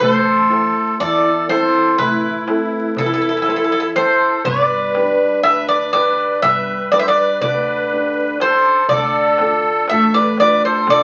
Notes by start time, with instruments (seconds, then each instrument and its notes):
0.00 upright bass A1, nylon-string guitar A3, accordion A4, bouzouki C5, darbuka dum
0.49 nylon-string guitar E4 A4 C5, darbuka tek
1.00 upright bass E2, nylon-string guitar E3, accordion A4, bouzouki D5, darbuka tek
1.49 nylon-string guitar C4 E4 A4, accordion A4, bouzouki C5, darbuka tek
1.74 darbuka tek
1.98 upright bass A1, nylon-string guitar A3, accordion E4, bouzouki B4, darbuka tek, darbuka dum
2.48 nylon-string guitar C4 E4 A4, darbuka tek
2.72 darbuka tek
2.97 upright bass E2, nylon-string guitar E3, accordion E4, bouzouki A4, darbuka dum
3.06 bouzouki A4
3.14 bouzouki A4
3.22 bouzouki A4
3.29 bouzouki A4
3.37 bouzouki A4
3.42 bouzouki A4
3.46 nylon-string guitar E4 A4 C5, bouzouki A4, darbuka tek
3.56 bouzouki A4
3.64 bouzouki A4
3.72 bouzouki A4
3.80 bouzouki A4
3.96 nylon-string guitar E4 A4 C5, accordion A4, bouzouki C5, darbuka tek
4.21 darbuka tek
4.45 upright bass G1, nylon-string guitar G3, accordion B4, bouzouki D5, darbuka dum
4.95 nylon-string guitar D4 G4 B4, darbuka tek
5.43 upright bass D2, nylon-string guitar D3, accordion B4, bouzouki E5, darbuka tek
5.68 accordion B4, bouzouki D5
5.93 nylon-string guitar D4 G4 B4, accordion B4, bouzouki D5, darbuka tek
6.18 darbuka tek
6.42 upright bass G1, nylon-string guitar G3, accordion B4, bouzouki E5, darbuka tek, darbuka dum
6.92 nylon-string guitar D4 G4 B4, accordion B4, bouzouki D5, darbuka tek
6.99 accordion C5, bouzouki E5
7.08 accordion B4, bouzouki D5
7.17 darbuka tek
7.41 upright bass D2, nylon-string guitar D3, accordion B4, bouzouki D5, darbuka dum
7.67 darbuka tek
7.93 nylon-string guitar D4 G4 D5
8.40 nylon-string guitar G4, accordion A4, bouzouki C5, darbuka tek
8.64 darbuka tek
8.89 upright bass D2, nylon-string guitar D3, accordion A4, bouzouki D5, darbuka dum
9.38 nylon-string guitar D4 F4 A4, darbuka tek
9.88 upright bass A1, nylon-string guitar A3, accordion A4, bouzouki E5, darbuka tek
10.14 accordion B4, bouzouki D5
10.37 nylon-string guitar D4 F4 A4, accordion B4, bouzouki D5, darbuka tek
10.62 accordion A4, bouzouki C5, darbuka tek
10.87 upright bass D2, nylon-string guitar D3, accordion A4, bouzouki D5, darbuka tek, darbuka dum